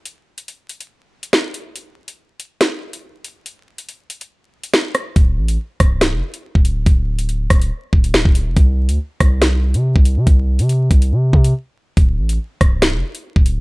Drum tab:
HH |x--xx-xx---x--x-|x--x--x-x--x--x-|x--xx-xx---x--x-|x--x--x-x--x--x-|
SD |------------o---|--------o-------|------------o-r-|------r-o-------|
BD |----------------|----------------|----------------|o-----o------o--|

HH |x--xx-xx---x--x-|x--x--x-x--x--x-|x--xx-xx---x----|x--x--x-x--x--x-|
SD |------r-----o---|------r-o-------|----------------|------r-o-------|
BD |o-----o---o--o--|o-----o------o--|o-----o---o-----|o-----o------o--|